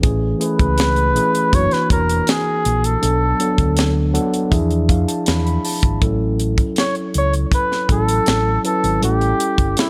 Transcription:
0.02 A1 E3 A3 C#4 G#4, kick, closed hi-hat
0.39 E3 A3 C#4 G#4 B4, closed hi-hat
0.59 C#2, kick, closed hi-hat
0.78 snare, closed hi-hat
0.96 closed hi-hat
1.15 E3 A3 C#4 G#4, closed hi-hat
1.35 closed hi-hat
1.53 F#1 E3 A#3 F#4 C#5, kick, closed hi-hat
1.71 B4, muted fingered electric bass stroke, snare, closed hi-hat
1.90 E1 A#4, kick, closed hi-hat
2.09 closed hi-hat
2.27 G#4, snare, closed hi-hat
2.65 A#1, closed hi-hat
2.84 A4, closed hi-hat
3.02 B1 F#3 B3 D4 A4, closed hi-hat
3.39 F#3 B3 D4 A4, closed hi-hat
3.58 D2, kick, closed hi-hat
3.77 snare, closed hi-hat
4.13 F#3 B3 D4 A4 F#5, closed hi-hat
4.34 closed hi-hat
4.50 E2 F3 D4 E4 G#4 E5, kick, closed hi-hat
4.71 closed hi-hat
4.89 F2 F5, kick, closed hi-hat
5.08 A5, closed hi-hat
5.26 E2 B5, snare, closed hi-hat
5.46 B5, closed hi-hat
5.65 A5, open hi-hat
5.83 G#1, kick, closed hi-hat
6.02 A1 F#3 C#4 E4 A4, kick, closed hi-hat
6.40 closed hi-hat
6.58 kick, closed hi-hat
6.76 C#5, snare, closed hi-hat
6.95 closed hi-hat
7.14 C#2 C#5, closed hi-hat
7.33 closed hi-hat
7.52 B4, kick, closed hi-hat
7.72 snare
7.89 A1 F#3 C#4 E4 A4, kick, closed hi-hat
8.08 closed hi-hat
8.26 A1, snare, closed hi-hat
8.64 F#3 C#4 E4 A4 B4, closed hi-hat
8.84 G#1, closed hi-hat
9.01 A1 G3 C#4 E4 G4 A4, closed hi-hat
9.21 closed hi-hat
9.40 closed hi-hat
9.58 G1, kick, closed hi-hat
9.77 E4, snare, closed hi-hat

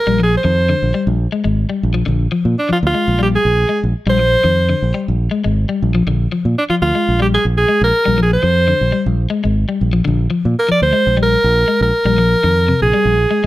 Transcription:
Already playing: A#4
0.07 A#1 G3
0.20 F3 G#4
0.37 C5
0.44 F2 D#3
0.69 D3
0.82 A#1
0.94 G3
1.07 A#1
1.32 G#3
1.44 G#1 G#3
1.69 G3
1.83 A#1
1.94 F3
2.06 A#1 D3
2.32 F3
2.45 A#2
2.59 D4
2.69 F3 F4, muted fingered electric bass stroke
2.83 D2 F4
2.94 G#3
3.08 A#1
3.19 G3 G4
3.35 G#4
3.45 A#1
3.69 G#3
3.83 A#1
4.06 A#1 G3 C5
4.19 F3
4.44 F2 D#3
4.69 D3
4.82 A#1
4.94 G3
5.08 A#1
5.31 G#3
5.44 G#1 G#3
5.69 G3
5.82 A#1
5.95 F3
6.07 A#1 D3
6.32 F3
6.45 A#2
6.58 D4
6.69 F3 F4, muted fingered electric bass stroke
6.82 D2 F4
6.95 G#3
7.09 A#1
7.20 G3 G4
7.34 G#4
7.45 A#1
7.57 G#4
7.68 G#3
7.81 A#1 A#4
8.05 A#1 G3
8.18 F3
8.22 G#4
8.33 C5
8.43 F2 F3
8.68 D3
8.81 A#1
8.92 G3
9.06 A#1
9.30 G#3
9.44 G#1 G#3
9.69 G3
9.81 A#1
9.93 F3
10.05 A#1 D3
10.30 F3
10.45 A#2
10.59 A#4
10.69 F3 D5, muted fingered electric bass stroke
10.82 D2 C5
10.93 G#3
11.07 A#1
11.17 G3
11.23 A#4
11.44 A#1
11.68 G#3
11.81 A#1 A#4
12.05 A#1 G3
12.18 F3
12.43 F2 D#3
12.68 C3
12.82 A#1 G#4
12.93 G3
13.05 A#1
13.31 G#3

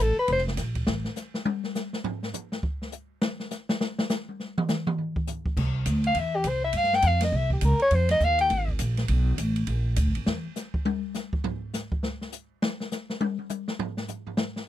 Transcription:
0.00 A1 A4
0.17 B4, muted upright bass stroke
0.28 F1, kick, ride
0.32 C5
0.38 snare
0.48 snare
0.57 A#1, kick, snare, hi-hat pedal, ride
0.75 kick, ride
0.87 A1, snare
1.04 snare
1.16 snare, hi-hat pedal
1.34 snare
1.45 high tom
1.64 snare
1.75 snare, hi-hat pedal
1.93 snare
2.04 floor tom
2.23 snare
2.33 floor tom, hi-hat pedal
2.52 snare
2.63 kick
2.82 snare
2.92 hi-hat pedal
3.22 snare
3.40 snare
3.51 snare, hi-hat pedal
3.69 snare
3.81 snare
3.99 snare
4.09 snare, hi-hat pedal
4.29 high tom
4.40 snare
4.58 mid tom
4.68 snare, hi-hat pedal
4.87 mid tom
4.98 floor tom
5.16 kick
5.27 floor tom, hi-hat pedal
5.46 kick
5.57 C2, kick, crash
5.86 D2, hi-hat pedal, ride
6.04 F5, ride
6.15 E2, kick, ride
6.19 E5
6.36 G4
6.44 C2, kick, hi-hat pedal, ride
6.48 C5
6.64 E5
6.73 G2, kick, ride
6.77 F5
6.83 snare
6.93 G5, snare
7.02 F2, kick, hi-hat pedal, ride
7.07 F5
7.20 D#5, snare, ride
7.32 C2 E5, kick
7.50 G4, kick
7.61 C#2 A#4, hi-hat pedal, ride
7.79 C#5, ride
7.91 F2, kick, ride
7.95 C5
8.09 D#5, snare, ride
8.20 D#2, kick, hi-hat pedal
8.24 F5
8.39 G5, ride
8.50 G#1, kick, ride
8.68 kick
8.79 A#1, kick, hi-hat pedal, ride
8.97 snare, ride
9.08 B1, kick, ride
9.38 A1, kick, hi-hat pedal, ride
9.56 ride
9.67 A#1, kick, ride
9.96 D2, kick, hi-hat pedal, ride
10.07 A#1
10.15 G#1, ride
10.26 E2, snare
10.56 snare, hi-hat pedal
10.74 kick
10.85 high tom
11.14 snare, hi-hat pedal
11.33 kick
11.44 floor tom
11.73 snare, hi-hat pedal
11.92 kick
12.03 snare
12.21 snare
12.32 hi-hat pedal
12.62 snare
12.80 snare
12.91 snare, hi-hat pedal
13.10 snare
13.21 high tom
13.39 high tom
13.49 hi-hat pedal, high tom
13.68 snare
13.79 floor tom
13.97 snare
14.08 floor tom, hi-hat pedal
14.27 floor tom
14.37 snare
14.56 snare

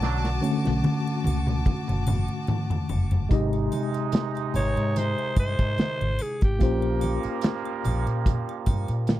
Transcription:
Already playing: D3 F#3 A3 C#4 D4 F#4 A5 D6
0.02 B1 F#3 A3 D4, snare, muted triangle
0.24 snare, muted triangle
0.42 D3 A3 C#4, muted conga, triangle
0.65 B1, snare, muted triangle
0.83 high tom, high conga, muted triangle
1.08 muted triangle
1.24 C#2, high tom, low conga, triangle
1.47 mid tom, muted triangle
1.66 kick, muted conga, low conga, muted triangle
1.88 F#1, mid tom, muted triangle
2.07 mid tom, muted conga, low conga, triangle
2.28 muted triangle
2.47 mid tom, high conga, muted triangle
2.70 floor tom, high conga, muted triangle
2.89 F#1, floor tom, triangle
3.11 floor tom, muted triangle
3.29 G#1 C3 G#3 D#4 G4 D#5, kick, closed hi-hat, muted triangle
3.53 closed hi-hat, muted triangle
3.72 closed hi-hat, muted conga, triangle
3.94 closed hi-hat, muted triangle
4.12 snare, closed hi-hat, high conga, muted triangle
4.35 closed hi-hat, muted triangle
4.54 G#1 C#5, closed hi-hat, low conga, triangle
4.77 G#2, closed hi-hat, muted triangle
4.96 C5, snare, closed hi-hat, muted conga, muted triangle
5.19 muted triangle
5.36 G2 C5, kick, closed hi-hat, triangle
5.59 G#2, kick, closed hi-hat, muted triangle
5.78 muted fingered electric bass stroke, snare, closed hi-hat, high conga, muted triangle
6.01 G#1, high conga, muted triangle
6.19 G#4, closed hi-hat, triangle
6.41 G#1 G4, kick, closed hi-hat, muted triangle
6.59 A#1 F3 G3 A#3 C#4 F4 G4 C5, kick, closed hi-hat, muted triangle
6.82 muted triangle
7.01 closed hi-hat, muted conga, triangle
7.23 muted fingered electric bass stroke, closed hi-hat, muted triangle
7.41 snare, closed hi-hat, high conga, muted triangle
7.65 muted triangle
7.84 A#1, closed hi-hat, low conga, triangle
8.07 A#2, closed hi-hat, muted triangle
8.26 kick, closed hi-hat, muted conga, low conga, muted triangle
8.49 muted triangle
8.66 G2, kick, closed hi-hat, muted conga, low conga, triangle
8.88 A#2, closed hi-hat, muted triangle
9.07 snare, closed hi-hat, high conga, muted triangle

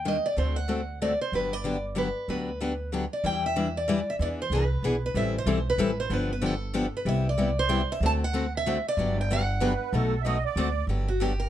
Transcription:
Already playing: D#2
0.05 D#3 G3 A#3 D4 G4 D#5
0.26 D5
0.36 D2 D3 A3 C4 F#4 A4 C5
0.56 F#5
0.68 D3 A3 C4 F#4 A4
1.02 D3 A3 C4 F#4 A4 D5
1.21 C5
1.32 G1 D3 F#3 B3 D4 G4 B4
1.53 D5
1.64 D3 F#3 B3 D4 G4
1.95 D3 F#3 B3 D4 G4 B4
2.28 D2 D3 F#3 B3 D4 G4 B4
2.61 D3 F#3 B3 D4 G4
2.92 D3 F#3 B3 D4 G4
3.13 D5
3.24 E2 E3 G3 D4 E4 B4 G5
3.46 E5
3.56 E3 G3 D4 E4 B4
3.77 D5
3.88 E3 G3 D4 E4 B4
4.10 E5
4.19 E2 E3 B3 D4 G#4 D5
4.42 C5
4.50 C2 E3 B3 D4 G#4
4.55 B4
4.83 B1 E3 B3 D4 G#4
5.06 B4
5.14 A1 E3 G3 C4 E4 A4 E5
5.38 C5
5.46 B1 E3 G3 C4 E4 A4
5.70 B4
5.78 A1 E3 G3 C4 E4 A4
6.00 C5
6.10 G1 D3 F3 B3 D4 G4 B4
6.33 B4
6.42 D3 F3 B3 D4 G4
6.46 A4
6.73 D3 F3 B3 D4 G4
6.97 B4
7.05 C2 C3 G3 B3 E4 G4 E5
7.29 D5
7.38 C3 G3 B3 E4 G4
7.59 C5
7.69 C3 G3 B3 E4 G4
7.92 E5
8.00 D2 D3 A3 C4 F#4 A4
8.06 A5
8.24 F#5
8.33 D3 A3 C4 F#4 A4
8.57 E5
8.66 D3 A3 C4 F#4 A4
8.88 D5
8.97 G1 D3 F#3 B3 D4 G4
9.21 G5
9.30 D3 F#3 B3 D4 G4 F#5
9.60 D3 F#3 B3 D4 G4 B4
9.92 B1 B2 F#3 A3 D#4 F#4 A4
10.22 B2 D#5 E5
10.26 F#3 A3 D#4 F#4
10.45 D5
10.56 D2 D3 A3 C4 F#4 A4
10.87 G1 D3 F#3 B3 D4 G4
11.08 F#4
11.20 D3 F#3 B3 D4 G4
11.40 A#4

